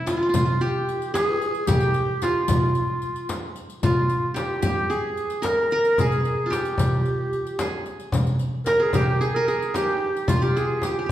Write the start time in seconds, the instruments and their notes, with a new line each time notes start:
Already playing: qanun E4
0.06 clarinet E4, qanun F4, riq, darbuka tek, frame drum
0.17 qanun F4, clarinet F4
0.23 qanun F4
0.29 qanun F4
0.34 qanun F4, riq, frame drum, darbuka dum
0.45 qanun F4
0.61 qanun G4, clarinet G4, riq
0.89 riq, darbuka ka
1.02 riq
1.14 qanun G#4, clarinet G#4, riq, darbuka tek, frame drum
1.42 riq
1.55 riq, darbuka ka
1.67 clarinet G4, qanun G4, riq, frame drum, darbuka dum
1.80 riq, darbuka ka
1.94 riq
2.22 qanun F4, clarinet F4, riq, darbuka tek, frame drum
2.48 riq, frame drum, darbuka dum
2.75 riq
3.02 riq, darbuka ka
3.16 riq
3.29 riq, darbuka tek, frame drum
3.56 riq
3.70 riq, darbuka ka
3.83 clarinet F4, qanun F4, riq, frame drum, darbuka dum
3.97 darbuka ka
4.09 riq
4.34 qanun G4, clarinet G4, riq, darbuka tek, frame drum
4.62 qanun G4, riq, frame drum
4.90 qanun G#4, clarinet G#4, riq
5.17 riq
5.30 riq
5.42 qanun A#4, clarinet A#4, riq, darbuka tek, frame drum
5.71 qanun A#4, riq
5.85 riq, darbuka ka
5.98 clarinet G#4, qanun G#4, riq, frame drum, darbuka dum
6.12 riq, darbuka ka
6.25 riq, darbuka ka
6.46 qanun F4
6.50 qanun G4, clarinet G4, riq, darbuka tek, frame drum
6.65 riq
6.78 riq, frame drum, darbuka dum
7.06 riq, darbuka ka
7.33 riq, darbuka ka
7.46 riq, darbuka ka
7.59 qanun G#4, riq, darbuka tek, frame drum
7.86 riq
8.00 riq, darbuka ka
8.12 riq, frame drum, darbuka dum
8.27 riq, darbuka ka
8.39 riq
8.66 qanun A#4, clarinet A#4, riq, darbuka tek, frame drum
8.80 qanun G#4, clarinet G#4
8.93 qanun G4, clarinet G4, riq, frame drum, darbuka dum
9.21 qanun G#4, clarinet G#4, riq
9.35 clarinet A#4, qanun A#4
9.48 qanun G#4, clarinet G#4, riq, darbuka ka
9.62 riq
9.74 qanun G4, clarinet G4, riq, darbuka tek, frame drum
10.15 riq, darbuka ka
10.28 qanun F4, clarinet F4, riq, darbuka dum, frame drum
10.42 qanun G4, clarinet G4, riq, darbuka ka
10.57 qanun G#4, clarinet G#4, riq
10.82 clarinet G4, qanun G4, riq, darbuka tek, frame drum
10.91 qanun G4
10.99 qanun G4
11.06 qanun G4